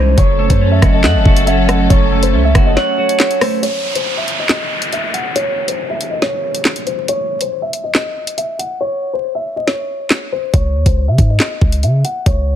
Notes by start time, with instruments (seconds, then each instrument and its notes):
Already playing: 808-style bass C2, string section E3 C#4, clean electric guitar E3 G#3 C#4 D#4, grand piano C5, soft synth lead C5
0.18 808-style bass F#1, string section F#3 C#4 A4, clean electric guitar F#3, grand piano C#5, kick, closed hi-hat
0.39 clean electric guitar A3, soft synth lead C#5
0.50 808-style bass F#2, grand piano C5, kick, closed hi-hat
0.61 clean electric guitar C#4
0.71 grand piano E5
0.82 808-style bass F#1, clean electric guitar F#4, soft synth lead D#5, kick, cross-stick, closed hi-hat
0.93 grand piano D#5
1.04 808-style bass F#2, grand piano D#5, soft synth lead E5, clean electric guitar F#5, snare, clap
1.15 808-style bass F#1
1.26 808-style bass F#1, clean electric guitar F#4, kick
1.37 closed hi-hat
1.47 clean electric guitar C#4, grand piano E5, soft synth lead F#5, closed hi-hat
1.68 clean electric guitar A3, soft synth lead D#5, grand piano F#5, cross-stick, closed hi-hat
1.90 808-style bass F#1, clean electric guitar F#3, grand piano C#5, kick, closed hi-hat
2.12 clean electric guitar A3
2.23 grand piano C5, closed hi-hat
2.33 808-style bass C#2, clean electric guitar C#4, soft synth lead E5
2.44 grand piano E5
2.55 808-style bass F#1, clean electric guitar F#4, soft synth lead F#5, kick, cross-stick, closed hi-hat
2.66 grand piano D#5
2.76 grand piano C#5, clean electric guitar F#5, snare
2.98 clean electric guitar F#4, soft synth lead C#5
3.09 closed hi-hat
3.20 clean electric guitar C#4, snare, clap, closed hi-hat
3.31 closed hi-hat
3.41 clean electric guitar A3, grand piano C5, cross-stick, open hi-hat
3.63 grand piano C#5, closed hi-hat, downlifter
3.95 grand piano C5, closed hi-hat
4.17 grand piano E5
4.28 closed hi-hat
4.39 grand piano D#5
4.49 grand piano D#5, snare, clap
4.82 closed hi-hat
4.93 grand piano E5, closed hi-hat
5.14 grand piano F#5, closed hi-hat
5.36 grand piano C#5, closed hi-hat
5.68 grand piano C5, closed hi-hat
5.90 grand piano E5
6.01 closed hi-hat
6.11 grand piano D#5
6.22 grand piano C#5, snare
6.55 closed hi-hat
6.65 snare, clap, closed hi-hat
6.76 closed hi-hat
6.87 grand piano C5, closed hi-hat
7.08 grand piano C#5, closed hi-hat
7.41 grand piano C5, closed hi-hat
7.62 grand piano E5
7.73 closed hi-hat
7.84 grand piano D#5
7.95 grand piano D#5, snare, clap
8.27 closed hi-hat
8.38 grand piano E5, closed hi-hat
8.59 grand piano F#5, closed hi-hat
8.81 grand piano C#5
9.13 grand piano C5
9.35 grand piano E5
9.56 grand piano D#5
9.67 grand piano C#5, snare
10.10 snare, clap
10.32 grand piano C5
10.53 808-style bass C#2, grand piano C#5, kick, closed hi-hat
10.75 808-style bass D#2
10.86 808-style bass C#2, grand piano C5, kick, closed hi-hat
11.08 808-style bass C#3, grand piano E5
11.18 808-style bass G#2, kick, closed hi-hat
11.30 grand piano D#5
11.40 grand piano D#5, snare, clap
11.61 808-style bass C#2, kick
11.72 closed hi-hat
11.83 808-style bass C#3, grand piano E5, closed hi-hat
12.04 grand piano F#5, closed hi-hat
12.26 808-style bass C#2, grand piano C#5, kick, closed hi-hat